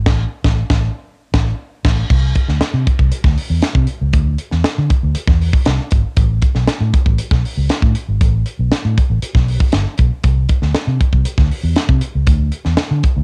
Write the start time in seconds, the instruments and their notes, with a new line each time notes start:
0.06 fingered electric bass A1, kick, snare, crash
0.44 fingered electric bass A1, kick, snare
0.70 fingered electric bass A1, kick, snare
1.34 fingered electric bass A1, kick, snare
1.85 fingered electric bass A1, kick, snare, crash
2.10 fingered electric bass C2, kick, crash
2.35 kick, closed hi-hat
2.48 fingered electric bass D2, snare
2.61 muted fingered electric bass stroke, snare, closed hi-hat
2.74 fingered electric bass C3
2.87 kick, closed hi-hat
2.99 fingered electric bass C2, kick
3.12 closed hi-hat
3.24 fingered electric bass D2, kick, snare
3.38 open hi-hat
3.50 fingered electric bass E2
3.62 snare, closed hi-hat
3.75 fingered electric bass C3, kick
3.87 closed hi-hat
4.01 fingered electric bass C#2
4.13 fingered electric bass D2, kick, closed hi-hat
4.38 closed hi-hat
4.51 fingered electric bass E2, snare
4.64 muted fingered electric bass stroke, snare, closed hi-hat
4.78 fingered electric bass D3
4.90 kick, closed hi-hat
5.03 fingered electric bass D2
5.15 muted fingered electric bass stroke, closed hi-hat
5.27 fingered electric bass E2, kick, snare
5.41 open hi-hat
5.53 kick
5.65 fingered electric bass C2, snare, closed hi-hat
5.91 fingered electric bass G#1, kick, closed hi-hat
6.17 fingered electric bass A1, kick, closed hi-hat
6.42 kick, closed hi-hat
6.55 fingered electric bass B1, snare
6.68 muted fingered electric bass stroke, snare, closed hi-hat
6.81 fingered electric bass A2
6.94 kick, closed hi-hat
7.06 fingered electric bass A1, kick
7.18 closed hi-hat
7.31 fingered electric bass B1, kick, snare
7.45 open hi-hat
7.57 fingered electric bass C#2
7.69 snare, closed hi-hat
7.82 fingered electric bass A2, kick
7.95 closed hi-hat
8.08 fingered electric bass G#1
8.21 fingered electric bass A1, kick, closed hi-hat
8.46 closed hi-hat
8.59 fingered electric bass B1
8.71 muted fingered electric bass stroke, snare, closed hi-hat
8.85 fingered electric bass A2
8.98 kick, closed hi-hat
9.10 fingered electric bass A1
9.22 muted fingered electric bass stroke, closed hi-hat
9.35 fingered electric bass B1, kick, snare
9.48 open hi-hat
9.60 kick
9.72 fingered electric bass G1, snare, closed hi-hat
9.98 fingered electric bass B1, kick, closed hi-hat
10.24 fingered electric bass C2, kick, closed hi-hat
10.49 kick, closed hi-hat
10.62 fingered electric bass D2, snare
10.75 muted fingered electric bass stroke, snare, closed hi-hat
10.87 fingered electric bass C3
11.01 kick, closed hi-hat
11.13 fingered electric bass C2, kick
11.25 closed hi-hat
11.38 fingered electric bass D2, kick, snare
11.51 open hi-hat
11.64 fingered electric bass E2
11.76 snare, closed hi-hat
11.89 fingered electric bass C3, kick
12.01 closed hi-hat
12.15 fingered electric bass C#2
12.27 fingered electric bass D2, kick, closed hi-hat
12.52 closed hi-hat
12.65 fingered electric bass E2, snare
12.77 snare, closed hi-hat
12.91 fingered electric bass D3
13.03 kick, closed hi-hat
13.17 fingered electric bass D2